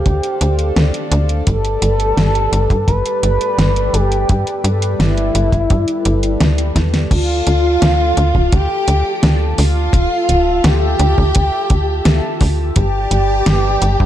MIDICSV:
0, 0, Header, 1, 6, 480
1, 0, Start_track
1, 0, Tempo, 705882
1, 997, Time_signature, 4, 2, 24, 8
1, 9559, End_track
2, 0, Start_track
2, 0, Title_t, "Analog synth pad"
2, 0, Program_c, 0, 89
2, 0, Note_on_c, 0, 62, 77
2, 0, Note_on_c, 0, 69, 70
2, 0, Note_on_c, 0, 72, 70
2, 0, Note_on_c, 0, 74, 71
2, 0, Note_on_c, 0, 77, 85
2, 970, Note_off_c, 0, 77, 0
2, 971, Note_off_c, 0, 62, 0
2, 971, Note_off_c, 0, 72, 0
2, 997, Note_on_c, 0, 55, 79
2, 997, Note_on_c, 0, 67, 71
2, 997, Note_on_c, 0, 71, 73
2, 4810, Note_off_c, 0, 55, 0
2, 4810, Note_off_c, 0, 67, 0
2, 4810, Note_off_c, 0, 69, 0
2, 4810, Note_off_c, 0, 71, 0
2, 4812, Note_off_c, 0, 74, 0
2, 4837, Note_on_c, 0, 81, 87
2, 4838, Note_on_c, 0, 65, 79
2, 4838, Note_on_c, 0, 69, 74
2, 4838, Note_on_c, 0, 74, 74
2, 6738, Note_off_c, 0, 74, 0
2, 6757, Note_on_c, 0, 76, 75
2, 8650, Note_off_c, 0, 65, 0
2, 8650, Note_off_c, 0, 69, 0
2, 8658, Note_off_c, 0, 76, 0
2, 8675, Note_on_c, 0, 67, 80
2, 8675, Note_on_c, 0, 71, 74
2, 8676, Note_on_c, 0, 74, 72
2, 9559, Note_off_c, 0, 67, 0
2, 9559, Note_off_c, 0, 71, 0
2, 9559, Note_off_c, 0, 74, 0
2, 9559, Note_off_c, 0, 81, 0
2, 9559, End_track
3, 0, Start_track
3, 0, Title_t, "Analog synth lead"
3, 0, Program_c, 1, 81
3, 0, Note_on_c, 1, 67, 108
3, 902, Note_off_c, 1, 67, 0
3, 998, Note_on_c, 1, 69, 117
3, 1958, Note_on_c, 1, 71, 105
3, 1969, Note_off_c, 1, 69, 0
3, 2675, Note_on_c, 1, 67, 99
3, 2685, Note_off_c, 1, 71, 0
3, 3300, Note_off_c, 1, 67, 0
3, 3397, Note_on_c, 1, 64, 109
3, 4741, Note_off_c, 1, 64, 0
3, 4836, Note_on_c, 1, 65, 119
3, 5795, Note_on_c, 1, 67, 108
3, 5806, Note_off_c, 1, 65, 0
3, 6420, Note_off_c, 1, 67, 0
3, 6515, Note_on_c, 1, 65, 108
3, 7237, Note_on_c, 1, 67, 113
3, 7247, Note_off_c, 1, 65, 0
3, 8581, Note_off_c, 1, 67, 0
3, 8678, Note_on_c, 1, 67, 118
3, 9559, Note_off_c, 1, 67, 0
3, 9559, End_track
4, 0, Start_track
4, 0, Title_t, "String machine"
4, 0, Program_c, 2, 50
4, 4837, Note_on_c, 2, 65, 114
4, 5797, Note_off_c, 2, 65, 0
4, 5797, Note_on_c, 2, 67, 101
4, 6421, Note_off_c, 2, 67, 0
4, 6515, Note_on_c, 2, 65, 100
4, 7235, Note_on_c, 2, 67, 107
4, 7236, Note_off_c, 2, 65, 0
4, 8580, Note_off_c, 2, 67, 0
4, 8674, Note_on_c, 2, 67, 118
4, 9559, Note_off_c, 2, 67, 0
4, 9559, End_track
5, 0, Start_track
5, 0, Title_t, "Analog synth bass"
5, 0, Program_c, 3, 38
5, 40, Note_on_c, 3, 38, 77
5, 145, Note_off_c, 3, 38, 0
5, 279, Note_on_c, 3, 38, 84
5, 490, Note_off_c, 3, 38, 0
5, 519, Note_on_c, 3, 38, 85
5, 624, Note_off_c, 3, 38, 0
5, 758, Note_on_c, 3, 38, 98
5, 969, Note_off_c, 3, 38, 0
5, 1000, Note_on_c, 3, 31, 98
5, 1210, Note_off_c, 3, 31, 0
5, 1237, Note_on_c, 3, 31, 81
5, 1449, Note_off_c, 3, 31, 0
5, 1477, Note_on_c, 3, 31, 96
5, 1688, Note_off_c, 3, 31, 0
5, 1717, Note_on_c, 3, 31, 92
5, 1823, Note_off_c, 3, 31, 0
5, 1837, Note_on_c, 3, 43, 96
5, 1943, Note_off_c, 3, 43, 0
5, 1957, Note_on_c, 3, 31, 85
5, 2063, Note_off_c, 3, 31, 0
5, 2197, Note_on_c, 3, 31, 88
5, 2303, Note_off_c, 3, 31, 0
5, 2437, Note_on_c, 3, 31, 93
5, 2648, Note_off_c, 3, 31, 0
5, 2676, Note_on_c, 3, 31, 87
5, 2888, Note_off_c, 3, 31, 0
5, 2921, Note_on_c, 3, 43, 87
5, 3025, Note_off_c, 3, 43, 0
5, 3156, Note_on_c, 3, 43, 77
5, 3368, Note_off_c, 3, 43, 0
5, 3397, Note_on_c, 3, 31, 94
5, 3609, Note_off_c, 3, 31, 0
5, 3638, Note_on_c, 3, 31, 91
5, 3743, Note_off_c, 3, 31, 0
5, 3756, Note_on_c, 3, 31, 91
5, 3863, Note_off_c, 3, 31, 0
5, 3879, Note_on_c, 3, 43, 94
5, 3984, Note_off_c, 3, 43, 0
5, 4118, Note_on_c, 3, 31, 104
5, 4329, Note_off_c, 3, 31, 0
5, 4359, Note_on_c, 3, 38, 88
5, 4569, Note_off_c, 3, 38, 0
5, 4594, Note_on_c, 3, 40, 90
5, 4807, Note_off_c, 3, 40, 0
5, 4835, Note_on_c, 3, 38, 98
5, 5048, Note_off_c, 3, 38, 0
5, 5079, Note_on_c, 3, 38, 84
5, 5290, Note_off_c, 3, 38, 0
5, 5318, Note_on_c, 3, 38, 103
5, 5529, Note_off_c, 3, 38, 0
5, 5557, Note_on_c, 3, 38, 94
5, 5663, Note_off_c, 3, 38, 0
5, 5677, Note_on_c, 3, 26, 98
5, 5783, Note_off_c, 3, 26, 0
5, 5797, Note_on_c, 3, 38, 89
5, 5903, Note_off_c, 3, 38, 0
5, 6037, Note_on_c, 3, 38, 90
5, 6143, Note_off_c, 3, 38, 0
5, 6278, Note_on_c, 3, 38, 95
5, 6489, Note_off_c, 3, 38, 0
5, 6517, Note_on_c, 3, 38, 90
5, 6729, Note_off_c, 3, 38, 0
5, 6753, Note_on_c, 3, 26, 87
5, 6861, Note_off_c, 3, 26, 0
5, 6997, Note_on_c, 3, 26, 75
5, 7209, Note_off_c, 3, 26, 0
5, 7236, Note_on_c, 3, 38, 97
5, 7448, Note_off_c, 3, 38, 0
5, 7476, Note_on_c, 3, 38, 98
5, 7583, Note_off_c, 3, 38, 0
5, 7602, Note_on_c, 3, 38, 91
5, 7705, Note_off_c, 3, 38, 0
5, 7723, Note_on_c, 3, 38, 84
5, 7826, Note_off_c, 3, 38, 0
5, 7958, Note_on_c, 3, 38, 86
5, 8169, Note_off_c, 3, 38, 0
5, 8197, Note_on_c, 3, 38, 89
5, 8303, Note_off_c, 3, 38, 0
5, 8438, Note_on_c, 3, 38, 99
5, 8649, Note_off_c, 3, 38, 0
5, 8679, Note_on_c, 3, 31, 95
5, 8890, Note_off_c, 3, 31, 0
5, 8915, Note_on_c, 3, 31, 82
5, 9128, Note_off_c, 3, 31, 0
5, 9155, Note_on_c, 3, 31, 99
5, 9368, Note_off_c, 3, 31, 0
5, 9396, Note_on_c, 3, 31, 92
5, 9502, Note_off_c, 3, 31, 0
5, 9520, Note_on_c, 3, 43, 98
5, 9559, Note_off_c, 3, 43, 0
5, 9559, End_track
6, 0, Start_track
6, 0, Title_t, "Drums"
6, 38, Note_on_c, 9, 42, 61
6, 40, Note_on_c, 9, 36, 99
6, 106, Note_off_c, 9, 42, 0
6, 108, Note_off_c, 9, 36, 0
6, 159, Note_on_c, 9, 42, 37
6, 227, Note_off_c, 9, 42, 0
6, 279, Note_on_c, 9, 42, 87
6, 347, Note_off_c, 9, 42, 0
6, 399, Note_on_c, 9, 42, 35
6, 467, Note_off_c, 9, 42, 0
6, 520, Note_on_c, 9, 38, 112
6, 520, Note_on_c, 9, 42, 62
6, 588, Note_off_c, 9, 38, 0
6, 588, Note_off_c, 9, 42, 0
6, 640, Note_on_c, 9, 42, 37
6, 708, Note_off_c, 9, 42, 0
6, 759, Note_on_c, 9, 42, 86
6, 827, Note_off_c, 9, 42, 0
6, 879, Note_on_c, 9, 42, 35
6, 947, Note_off_c, 9, 42, 0
6, 998, Note_on_c, 9, 42, 64
6, 1000, Note_on_c, 9, 36, 109
6, 1066, Note_off_c, 9, 42, 0
6, 1068, Note_off_c, 9, 36, 0
6, 1119, Note_on_c, 9, 42, 39
6, 1187, Note_off_c, 9, 42, 0
6, 1238, Note_on_c, 9, 42, 90
6, 1306, Note_off_c, 9, 42, 0
6, 1358, Note_on_c, 9, 42, 39
6, 1426, Note_off_c, 9, 42, 0
6, 1479, Note_on_c, 9, 38, 108
6, 1479, Note_on_c, 9, 42, 63
6, 1547, Note_off_c, 9, 38, 0
6, 1547, Note_off_c, 9, 42, 0
6, 1599, Note_on_c, 9, 42, 38
6, 1667, Note_off_c, 9, 42, 0
6, 1719, Note_on_c, 9, 42, 87
6, 1787, Note_off_c, 9, 42, 0
6, 1837, Note_on_c, 9, 36, 100
6, 1840, Note_on_c, 9, 42, 35
6, 1905, Note_off_c, 9, 36, 0
6, 1908, Note_off_c, 9, 42, 0
6, 1957, Note_on_c, 9, 36, 113
6, 1958, Note_on_c, 9, 42, 62
6, 2025, Note_off_c, 9, 36, 0
6, 2026, Note_off_c, 9, 42, 0
6, 2078, Note_on_c, 9, 42, 38
6, 2146, Note_off_c, 9, 42, 0
6, 2198, Note_on_c, 9, 42, 87
6, 2266, Note_off_c, 9, 42, 0
6, 2318, Note_on_c, 9, 42, 37
6, 2386, Note_off_c, 9, 42, 0
6, 2438, Note_on_c, 9, 38, 111
6, 2438, Note_on_c, 9, 42, 64
6, 2506, Note_off_c, 9, 38, 0
6, 2506, Note_off_c, 9, 42, 0
6, 2559, Note_on_c, 9, 42, 37
6, 2627, Note_off_c, 9, 42, 0
6, 2679, Note_on_c, 9, 42, 89
6, 2747, Note_off_c, 9, 42, 0
6, 2799, Note_on_c, 9, 42, 36
6, 2867, Note_off_c, 9, 42, 0
6, 2918, Note_on_c, 9, 42, 66
6, 2921, Note_on_c, 9, 36, 102
6, 2986, Note_off_c, 9, 42, 0
6, 2989, Note_off_c, 9, 36, 0
6, 3040, Note_on_c, 9, 42, 39
6, 3108, Note_off_c, 9, 42, 0
6, 3159, Note_on_c, 9, 42, 91
6, 3227, Note_off_c, 9, 42, 0
6, 3279, Note_on_c, 9, 42, 39
6, 3347, Note_off_c, 9, 42, 0
6, 3400, Note_on_c, 9, 38, 109
6, 3400, Note_on_c, 9, 42, 65
6, 3468, Note_off_c, 9, 38, 0
6, 3468, Note_off_c, 9, 42, 0
6, 3519, Note_on_c, 9, 42, 40
6, 3587, Note_off_c, 9, 42, 0
6, 3638, Note_on_c, 9, 42, 91
6, 3706, Note_off_c, 9, 42, 0
6, 3757, Note_on_c, 9, 36, 87
6, 3759, Note_on_c, 9, 42, 36
6, 3825, Note_off_c, 9, 36, 0
6, 3827, Note_off_c, 9, 42, 0
6, 3877, Note_on_c, 9, 42, 65
6, 3879, Note_on_c, 9, 36, 109
6, 3945, Note_off_c, 9, 42, 0
6, 3947, Note_off_c, 9, 36, 0
6, 3997, Note_on_c, 9, 42, 39
6, 4065, Note_off_c, 9, 42, 0
6, 4116, Note_on_c, 9, 42, 93
6, 4184, Note_off_c, 9, 42, 0
6, 4236, Note_on_c, 9, 42, 38
6, 4304, Note_off_c, 9, 42, 0
6, 4355, Note_on_c, 9, 38, 113
6, 4355, Note_on_c, 9, 42, 66
6, 4423, Note_off_c, 9, 38, 0
6, 4423, Note_off_c, 9, 42, 0
6, 4476, Note_on_c, 9, 42, 39
6, 4544, Note_off_c, 9, 42, 0
6, 4595, Note_on_c, 9, 36, 53
6, 4596, Note_on_c, 9, 38, 62
6, 4596, Note_on_c, 9, 42, 94
6, 4663, Note_off_c, 9, 36, 0
6, 4664, Note_off_c, 9, 38, 0
6, 4664, Note_off_c, 9, 42, 0
6, 4717, Note_on_c, 9, 38, 68
6, 4717, Note_on_c, 9, 42, 39
6, 4785, Note_off_c, 9, 38, 0
6, 4785, Note_off_c, 9, 42, 0
6, 4835, Note_on_c, 9, 36, 109
6, 4836, Note_on_c, 9, 42, 96
6, 4836, Note_on_c, 9, 49, 106
6, 4903, Note_off_c, 9, 36, 0
6, 4904, Note_off_c, 9, 42, 0
6, 4904, Note_off_c, 9, 49, 0
6, 5077, Note_on_c, 9, 42, 70
6, 5145, Note_off_c, 9, 42, 0
6, 5317, Note_on_c, 9, 38, 118
6, 5317, Note_on_c, 9, 42, 98
6, 5385, Note_off_c, 9, 38, 0
6, 5385, Note_off_c, 9, 42, 0
6, 5557, Note_on_c, 9, 42, 69
6, 5625, Note_off_c, 9, 42, 0
6, 5677, Note_on_c, 9, 36, 58
6, 5745, Note_off_c, 9, 36, 0
6, 5797, Note_on_c, 9, 42, 98
6, 5798, Note_on_c, 9, 36, 127
6, 5865, Note_off_c, 9, 42, 0
6, 5866, Note_off_c, 9, 36, 0
6, 6036, Note_on_c, 9, 42, 70
6, 6104, Note_off_c, 9, 42, 0
6, 6276, Note_on_c, 9, 38, 118
6, 6276, Note_on_c, 9, 42, 95
6, 6344, Note_off_c, 9, 38, 0
6, 6344, Note_off_c, 9, 42, 0
6, 6515, Note_on_c, 9, 46, 81
6, 6583, Note_off_c, 9, 46, 0
6, 6753, Note_on_c, 9, 36, 127
6, 6756, Note_on_c, 9, 42, 97
6, 6821, Note_off_c, 9, 36, 0
6, 6824, Note_off_c, 9, 42, 0
6, 6997, Note_on_c, 9, 42, 71
6, 7065, Note_off_c, 9, 42, 0
6, 7236, Note_on_c, 9, 38, 124
6, 7236, Note_on_c, 9, 42, 99
6, 7304, Note_off_c, 9, 38, 0
6, 7304, Note_off_c, 9, 42, 0
6, 7476, Note_on_c, 9, 42, 71
6, 7544, Note_off_c, 9, 42, 0
6, 7602, Note_on_c, 9, 36, 57
6, 7670, Note_off_c, 9, 36, 0
6, 7715, Note_on_c, 9, 42, 97
6, 7723, Note_on_c, 9, 36, 124
6, 7783, Note_off_c, 9, 42, 0
6, 7791, Note_off_c, 9, 36, 0
6, 7955, Note_on_c, 9, 42, 68
6, 7958, Note_on_c, 9, 36, 114
6, 8023, Note_off_c, 9, 42, 0
6, 8026, Note_off_c, 9, 36, 0
6, 8196, Note_on_c, 9, 38, 125
6, 8196, Note_on_c, 9, 42, 99
6, 8264, Note_off_c, 9, 38, 0
6, 8264, Note_off_c, 9, 42, 0
6, 8436, Note_on_c, 9, 46, 78
6, 8438, Note_on_c, 9, 36, 65
6, 8504, Note_off_c, 9, 46, 0
6, 8506, Note_off_c, 9, 36, 0
6, 8676, Note_on_c, 9, 42, 92
6, 8679, Note_on_c, 9, 36, 113
6, 8744, Note_off_c, 9, 42, 0
6, 8747, Note_off_c, 9, 36, 0
6, 8916, Note_on_c, 9, 42, 68
6, 8984, Note_off_c, 9, 42, 0
6, 9155, Note_on_c, 9, 38, 127
6, 9155, Note_on_c, 9, 42, 95
6, 9223, Note_off_c, 9, 38, 0
6, 9223, Note_off_c, 9, 42, 0
6, 9396, Note_on_c, 9, 42, 68
6, 9464, Note_off_c, 9, 42, 0
6, 9520, Note_on_c, 9, 36, 67
6, 9559, Note_off_c, 9, 36, 0
6, 9559, End_track
0, 0, End_of_file